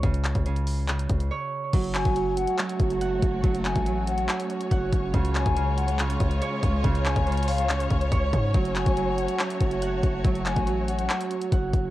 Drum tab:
CC |--------------------------------|x-------------------------------|--------------------------------|--------------------------------|
HH |x-x-x-x-x-x-o---x-x-x-x---------|x-x-x-x-x---x-x-x-x-x-x-x---x---|x-x-x-x-x---x-x-x-x-x-x-x---x---|x-x-x-x-x---x-x-x-x-x-x-x---x---|
CP |----x-----------x---------------|----x-----------x---------------|----x-----------x---------------|----x-----------x---------------|
BD |o-----o-------------o-----------|o-----o-------------o-------o---|o-----o-----------------o---o---|o-----o-------------o-------o---|

CC |--------------------------------|--------------------------------|--------------------------------|
HH |x-x-x-x-xxxxo-x-x-x-x-x-x---x---|x-x-x-x-x---x-x-x-x-x-x-x---x---|x-x-x-x-x---x-x-x-x-x-x-x---x---|
CP |----x-----------x---------------|----x-----------x---------------|----x-----------x---------------|
BD |o-----o-------------o---o---o---|o-----o-------------o-------o---|o-----o-----------------o---o---|